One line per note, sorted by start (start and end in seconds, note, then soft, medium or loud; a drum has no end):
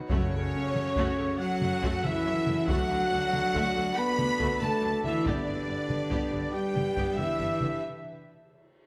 0.00 0.11 D#4 medium
0.00 2.67 F#4 medium
0.00 0.13 B4 medium
0.00 2.68 F#5 medium
0.10 0.18 F#2 loud
0.10 0.72 F#2 medium
0.10 1.36 C#3 loud
0.10 0.31 A3 loud
0.10 1.37 C#4 loud
0.10 2.69 C#4 medium
0.10 0.31 F#4 medium
0.10 5.26 A4 medium
0.10 1.36 C#5 loud
0.10 taiko loud
0.31 0.39 F#2 medium
0.31 0.42 C#3 medium
0.31 0.42 A3 medium
0.53 0.61 F#2 medium
0.53 0.64 F#3 medium
0.53 0.63 C#4 medium
0.74 0.82 F#2 medium
0.74 0.84 C#3 medium
0.74 0.83 A3 medium
0.74 taiko mid medium
0.96 1.04 F#2 loud
0.96 1.17 A3 loud
0.96 1.17 F#4 loud
0.96 taiko medium
1.17 1.25 F#2 medium
1.17 1.26 C#3 medium
1.17 1.26 A3 medium
1.39 2.05 F#3 loud
1.39 2.03 F#4 loud
1.39 2.04 F#5 loud
1.39 2.03 F#5 loud
1.39 2.05 F#5 loud
1.61 1.69 F#2 medium
1.61 1.70 C#3 medium
1.61 1.70 A3 medium
1.61 taiko mid medium
1.82 1.90 F#2 loud
1.82 2.02 A3 loud
1.82 2.03 F#4 loud
1.82 taiko medium
2.03 2.11 F#2 medium
2.03 2.11 C#3 medium
2.03 2.69 E3 loud
2.03 2.11 A3 medium
2.03 2.69 E4 loud
2.03 2.69 E5 loud
2.03 taiko mid medium
2.24 2.33 F#2 medium
2.24 2.32 F#3 medium
2.24 2.33 C#4 medium
2.46 2.54 F#2 medium
2.46 2.55 C#3 medium
2.46 2.55 A3 medium
2.46 taiko mid medium
2.68 2.76 D2 loud
2.68 3.98 F#3 loud
2.68 2.89 A3 loud
2.68 7.83 D4 medium
2.68 3.97 F#4 loud
2.68 2.89 F#4 medium
2.68 5.22 F#4 medium
2.68 7.83 D5 medium
2.68 3.95 F#5 loud
2.68 3.96 F#5 loud
2.68 taiko loud
2.89 2.97 D2 medium
2.89 2.99 D3 medium
2.89 2.98 A3 medium
3.11 3.19 D2 medium
3.11 3.20 F#3 medium
3.11 3.21 D4 medium
3.33 3.41 D2 medium
3.33 3.42 D3 medium
3.33 3.42 A3 medium
3.33 taiko mid medium
3.54 3.62 D2 loud
3.54 3.75 A3 loud
3.54 3.75 F#4 loud
3.54 taiko medium
3.75 3.83 D2 medium
3.75 3.84 D3 medium
3.75 3.84 A3 medium
3.96 4.60 B3 loud
3.96 4.62 B4 loud
3.96 4.61 B5 loud
4.18 4.26 D2 medium
4.18 4.26 D3 medium
4.18 4.26 A3 medium
4.18 taiko mid medium
4.39 4.47 D2 loud
4.39 4.60 A3 loud
4.39 4.60 F#4 medium
4.39 taiko medium
4.61 4.69 D2 medium
4.61 4.69 D3 medium
4.61 4.69 A3 medium
4.61 5.05 A3 loud
4.61 5.05 A4 loud
4.61 5.03 A5 medium
4.61 5.03 A5 loud
4.61 5.05 A5 loud
4.61 taiko mid medium
4.82 4.90 D2 medium
4.82 4.90 F#3 medium
4.82 4.90 D4 medium
5.04 5.12 D2 medium
5.04 5.13 D3 medium
5.04 5.26 E3 loud
5.04 5.13 A3 medium
5.04 5.26 E4 loud
5.04 5.25 E5 medium
5.04 5.26 E5 medium
5.04 taiko mid medium
5.25 5.34 G1 loud
5.25 6.55 D3 medium
5.25 5.45 B3 medium
5.25 6.55 D4 loud
5.25 5.46 G4 loud
5.25 7.83 G4 medium
5.25 7.83 B4 medium
5.25 6.54 D5 medium
5.25 taiko loud
5.46 5.55 G1 medium
5.46 5.55 D3 medium
5.46 5.54 B3 medium
5.67 5.75 G1 medium
5.67 5.75 G3 medium
5.67 5.75 D4 medium
5.89 5.97 G1 medium
5.89 5.98 D3 medium
5.89 5.98 B3 medium
5.89 taiko mid medium
6.10 6.18 G1 medium
6.10 6.31 B3 medium
6.10 6.31 G4 loud
6.10 taiko medium
6.32 6.40 G1 medium
6.32 6.40 D3 medium
6.32 6.40 B3 medium
6.53 7.17 G3 medium
6.53 7.18 G4 loud
6.53 7.18 G5 medium
6.53 7.17 G5 medium
6.75 6.83 G1 medium
6.75 6.83 D3 medium
6.75 6.83 B3 medium
6.75 taiko mid medium
6.96 7.04 G1 medium
6.96 7.17 B3 medium
6.96 7.17 G4 medium
6.96 taiko medium
7.16 7.25 G1 medium
7.16 7.26 D3 medium
7.16 7.82 E3 medium
7.16 7.27 B3 medium
7.16 7.82 E4 loud
7.16 7.81 E5 loud
7.16 7.82 E5 loud
7.16 7.81 E5 medium
7.16 taiko mid medium
7.39 7.47 G1 medium
7.39 7.48 G3 medium
7.39 7.47 D4 medium
7.61 7.69 G1 medium
7.61 7.70 D3 medium
7.61 7.70 B3 medium
7.61 taiko mid medium
7.82 reverse cymbal medium